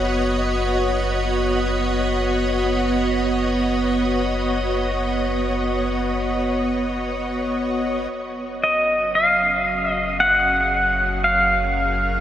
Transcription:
0.00 8.07 F#1 medium
0.00 8.12 B3 medium
0.00 10.39 F#4 medium
0.00 11.61 C#5 medium
0.00 10.81 D#5 medium
8.12 12.20 F#1 medium
8.12 12.20 F#3 medium
8.27 12.20 C#4 medium
8.64 9.19 D#5 medium
9.15 9.92 F5 medium
9.36 12.20 G#4 medium
9.92 10.20 D#5 medium
10.20 11.24 F#5 loud
10.66 12.20 A#4 medium
11.24 12.20 F5 medium

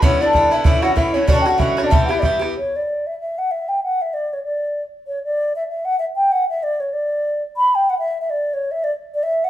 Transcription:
0.02 0.21 G2 medium
0.02 0.21 D3 medium
0.02 0.21 B3 medium
0.02 0.20 C#4 medium
0.02 0.20 E4 medium
0.02 0.23 C#5 medium
0.02 bodhran medium
0.21 0.33 D3 soft
0.21 0.34 B3 soft
0.21 0.54 D4 medium
0.21 0.35 E4 soft
0.21 0.54 D5 medium
0.33 0.52 G2 soft
0.33 0.53 D3 soft
0.33 0.51 B3 medium
0.33 0.50 E4 medium
0.33 bodhran medium
0.43 bodhran soft
0.51 0.65 D3 soft
0.51 0.66 B3 soft
0.51 0.65 E4 medium
0.51 0.66 E4 medium
0.51 0.64 E5 medium
0.51 bodhran soft
0.64 0.83 A2 medium
0.64 0.84 E3 medium
0.64 0.83 C#4 medium
0.64 0.85 E4 medium
0.64 0.81 E4 medium
0.64 0.84 E5 medium
0.64 bodhran medium
0.82 0.95 E3 soft
0.82 0.96 C#4 soft
0.82 0.97 E4 soft
0.82 0.96 F#4 medium
0.82 0.95 F#5 medium
0.82 bodhran medium
0.96 1.14 A2 medium
0.96 1.15 E3 medium
0.96 1.14 C#4 medium
0.96 1.16 E4 medium
0.96 1.13 E4 medium
0.96 1.15 E5 medium
0.96 bodhran medium
1.14 1.28 E3 soft
1.14 1.28 C#4 soft
1.14 1.29 C#4 medium
1.14 1.28 E4 soft
1.14 1.29 C#5 medium
1.27 1.46 B2 medium
1.27 1.46 D3 medium
1.27 1.46 C#4 medium
1.27 1.47 D4 medium
1.27 1.44 F#4 medium
1.27 1.40 D5 medium
1.27 bodhran medium
1.41 1.47 G5 medium
1.45 1.59 D3 soft
1.45 1.59 C#4 soft
1.45 1.59 F#4 medium
1.45 1.58 F#4 medium
1.45 1.61 F#5 medium
1.45 bodhran medium
1.58 1.77 B2 medium
1.58 1.78 D3 medium
1.58 1.77 C#4 medium
1.58 1.82 E4 medium
1.58 1.76 F#4 medium
1.58 1.86 E5 medium
1.58 bodhran medium
1.70 bodhran soft
1.77 1.91 D3 soft
1.77 1.91 C#4 soft
1.77 1.91 F#4 medium
1.77 bodhran medium
1.83 1.91 D4 medium
1.83 1.93 D5 medium
1.90 2.09 G2 medium
1.90 2.09 E3 medium
1.90 2.09 B3 medium
1.90 2.08 E4 medium
1.90 2.07 G4 medium
1.90 2.07 E5 medium
1.90 bodhran medium
2.06 2.23 E4 medium
2.06 2.22 G4 soft
2.06 2.12 F#5 medium
2.10 2.22 E3 soft
2.10 2.23 B3 soft
2.10 2.21 E5 medium
2.10 bodhran medium
2.19 2.40 G2 medium
2.19 2.41 E3 soft
2.19 2.24 D5 medium
2.19 2.41 E5 medium
2.19 bodhran medium
2.24 2.40 B3 soft
2.24 2.41 E4 medium
2.24 2.38 G4 medium
2.39 2.55 E3 soft
2.39 2.54 B3 soft
2.39 2.53 G4 soft
2.39 bodhran medium
2.57 2.78 C#5 medium
2.76 3.08 D5 medium
3.07 3.18 E5 medium
3.20 3.40 E5 medium
3.38 3.53 F#5 medium
3.51 3.70 E5 medium
3.68 3.81 G5 medium
3.83 4.03 F#5 medium
4.02 4.15 E5 medium
4.14 4.35 D5 medium
4.33 4.44 C#5 medium
4.45 4.82 D5 medium
5.07 5.23 C#5 medium
5.25 5.53 D5 medium
5.56 5.67 E5 medium
5.68 5.86 E5 medium
5.85 5.98 F#5 medium
5.99 6.05 E5 medium
6.16 6.33 G5 medium
6.32 6.49 F#5 medium
6.50 6.65 E5 medium
6.63 6.82 D5 medium
6.80 6.95 C#5 medium
6.93 7.42 D5 medium
7.57 7.76 B5 loud
7.75 7.91 G5 medium
7.90 7.97 F#5 medium
7.99 8.18 E5 medium
8.21 8.31 E5 medium
8.30 8.55 D5 medium
8.53 8.73 C#5 medium
8.71 8.85 E5 medium
8.84 8.92 D5 medium
9.14 9.25 D5 medium
9.23 9.46 E5 medium
9.44 9.50 F#5 medium

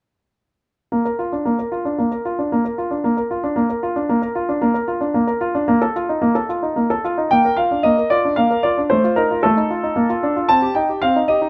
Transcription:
0.92 1.05 A#3 soft
1.05 1.19 A#4 soft
1.19 1.33 F4 soft
1.32 1.46 D4 soft
1.45 1.58 A#3 soft
1.59 1.73 A#4 soft
1.72 1.86 F4 soft
1.85 1.99 D4 soft
1.98 2.11 A#3 soft
2.12 2.26 A#4 soft
2.25 2.39 F4 soft
2.39 2.52 D4 soft
2.52 2.65 A#3 soft
2.65 2.79 A#4 soft
2.78 2.92 F4 soft
2.91 3.05 D4 soft
3.04 3.17 A#3 soft
3.17 3.31 A#4 soft
3.31 3.44 F4 soft
3.44 3.57 D4 soft
3.56 3.69 A#3 soft
3.70 3.84 A#4 soft
3.83 3.97 F4 soft
3.96 4.09 D4 soft
4.09 4.22 A#3 soft
4.22 4.36 A#4 soft
4.35 4.49 F4 soft
4.49 4.63 D4 soft
4.62 4.75 A#3 soft
4.74 4.89 A#4 soft
4.88 5.02 F4 soft
5.01 5.15 D4 soft
5.14 5.27 A#3 soft
5.27 5.42 A#4 soft
5.41 5.55 F4 soft
5.55 5.68 D4 soft
5.68 5.81 A#3 medium
5.82 5.96 A4 soft
5.96 6.09 F4 soft
6.09 6.23 D#4 soft
6.22 6.35 A#3 medium
6.35 6.49 A4 soft
6.49 6.63 F4 soft
6.63 6.77 D#4 soft
6.76 6.90 A#3 soft
6.90 7.05 A4 soft
7.04 7.19 F4 soft
7.18 7.31 D#4 soft
7.31 7.45 A#3 soft
7.31 7.55 G5 medium
7.45 7.59 A#4 soft
7.57 7.72 F4 soft
7.57 7.81 F5 soft
7.71 7.85 D4 soft
7.83 7.98 A#3 soft
7.83 8.11 D#5 medium
7.98 8.12 A#4 soft
8.10 8.25 F4 soft
8.10 8.35 D5 medium
8.25 8.39 D4 soft
8.36 8.51 A#3 soft
8.36 8.64 F5 medium
8.51 8.65 A#4 soft
8.63 8.79 F4 soft
8.63 8.79 D5 medium
8.78 8.91 D4 soft
8.90 9.04 A3 soft
8.90 9.17 C5 medium
9.04 9.18 F4 soft
9.16 9.31 D#4 soft
9.16 9.41 A#4 medium
9.31 9.45 F4 soft
9.43 9.57 A3 soft
9.43 10.49 A4 medium
9.57 9.71 D#4 soft
9.70 9.84 F4 soft
9.83 9.97 D#4 soft
9.96 10.09 A#3 soft
10.09 10.23 F4 soft
10.23 10.37 D4 soft
10.36 10.49 F4 soft
10.49 10.62 C4 soft
10.49 10.73 A5 medium
10.62 10.76 G4 soft
10.75 10.90 D#4 soft
10.75 11.02 G5 soft
10.89 11.03 G4 soft
11.02 11.15 C4 soft
11.02 11.17 F5 medium
11.16 11.29 D#4 soft
11.28 11.43 G4 soft
11.28 11.49 D#5 medium
11.42 11.49 D#4 soft

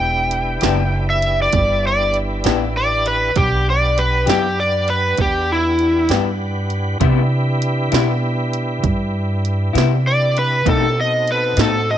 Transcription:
0.00 0.60 E1 medium
0.00 3.32 D4 medium
0.00 3.31 E4 medium
0.00 3.31 G4 medium
0.00 3.32 B4 medium
0.00 1.04 G5 medium
0.31 closed hi-hat medium
0.61 1.51 F#1 medium
0.61 0.81 E3 medium
0.61 0.81 B3 medium
0.61 0.81 D4 medium
0.61 0.80 G4 medium
0.61 snare loud
0.61 closed hi-hat medium
1.10 1.39 E5 medium
1.22 closed hi-hat medium
1.42 1.85 D5 medium
1.53 2.42 G1 medium
1.53 kick medium
1.53 closed hi-hat medium
1.87 2.15 D5 medium
2.14 closed hi-hat soft
2.44 3.33 A1 medium
2.44 2.64 E3 medium
2.44 2.63 B3 medium
2.44 2.63 D4 medium
2.44 2.63 G4 medium
2.44 snare medium
2.44 closed hi-hat medium
2.77 3.06 D5 medium
3.06 3.36 B4 medium
3.06 closed hi-hat soft
3.36 4.25 B1 medium
3.36 6.98 D4 medium
3.36 3.66 G4 medium
3.36 6.98 G4 medium
3.36 6.98 B4 medium
3.36 6.98 F#5 medium
3.36 kick loud
3.36 closed hi-hat medium
3.70 3.98 D5 medium
3.98 4.27 B4 medium
3.98 closed hi-hat medium
4.26 5.16 F#2 medium
4.26 4.46 E3 medium
4.26 4.46 B3 medium
4.26 4.45 D4 medium
4.26 4.45 G4 medium
4.26 4.58 G4 medium
4.26 snare loud
4.26 closed hi-hat medium
4.60 4.88 D5 medium
4.88 5.18 B4 medium
4.88 closed hi-hat medium
5.17 6.07 E2 medium
5.17 kick medium
5.17 closed hi-hat medium
5.22 5.49 G4 medium
5.52 6.09 E4 medium
5.79 closed hi-hat soft
6.09 6.98 G2 medium
6.09 6.29 E3 medium
6.09 6.29 B3 soft
6.09 6.28 D4 medium
6.09 6.28 G4 medium
6.09 snare medium
6.09 closed hi-hat medium
6.70 closed hi-hat medium
7.00 7.19 C3 medium
7.00 7.89 C3 medium
7.00 7.19 G3 medium
7.00 7.20 B3 medium
7.00 10.62 D4 medium
7.00 10.62 E4 medium
7.00 7.19 E4 medium
7.00 10.63 G4 medium
7.00 10.62 B4 medium
7.00 kick loud
7.00 closed hi-hat medium
7.62 closed hi-hat medium
7.92 8.81 B2 medium
7.92 8.11 C3 medium
7.92 8.11 G3 medium
7.92 8.10 B3 medium
7.92 8.10 E4 medium
7.92 snare loud
7.92 closed hi-hat medium
8.53 closed hi-hat medium
8.83 9.72 G2 medium
8.83 kick medium
8.83 closed hi-hat medium
9.45 closed hi-hat soft
9.73 10.63 C3 medium
9.73 9.93 C3 medium
9.73 9.93 G3 medium
9.73 9.93 B3 medium
9.73 9.92 E4 medium
9.73 closed hi-hat medium
9.78 snare medium
10.07 10.36 D5 loud
10.37 10.67 B4 medium
10.37 closed hi-hat medium
10.65 10.84 B2 medium
10.65 11.55 B2 medium
10.65 10.84 A3 medium
10.65 10.96 A#3 medium
10.65 10.85 C4 medium
10.65 10.96 C#4 medium
10.65 10.85 D#4 medium
10.65 10.96 E4 medium
10.65 10.96 G4 medium
10.65 kick loud
10.65 closed hi-hat medium
10.69 10.97 A4 medium
10.96 11.98 C4 medium
10.96 11.98 D#4 medium
10.96 11.98 F#4 medium
10.96 11.98 A4 medium
11.01 11.28 D#5 medium
11.28 closed hi-hat medium
11.32 11.59 B4 medium
11.57 11.98 A2 medium
11.57 11.76 B2 medium
11.57 11.76 A3 medium
11.57 11.75 C4 medium
11.57 11.75 D#4 medium
11.57 snare loud
11.57 closed hi-hat medium
11.61 11.89 A4 medium
11.91 11.98 D#5 loud

